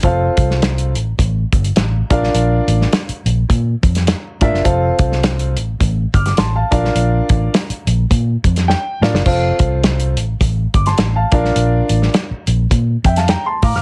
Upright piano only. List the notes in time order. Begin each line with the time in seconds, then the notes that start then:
0.04 C4 F4 A4 C5 F5
2.10 D4 F4 A#4 D5 F5
4.41 D4 F4 A#4 D5 E5
4.64 C4 F4 A4 C5 F5
6.14 D6 F6
6.26 D6
6.38 A5 C6
6.56 F5 A5
6.71 D4 F4 A#4 D5 F5
8.68 G5
9.02 D4 F4 A#4 D5 F5
9.25 C4 F4 A4 C5 F5
10.75 D6
10.87 A5 C6
11.16 F5 A5
11.32 D4 F4 A#4 D5 F5
13.06 E5 G5
13.17 F5 A5
13.29 G5 A#5
13.46 A5 C6
13.63 F5 A#5 D6
13.76 D6 F6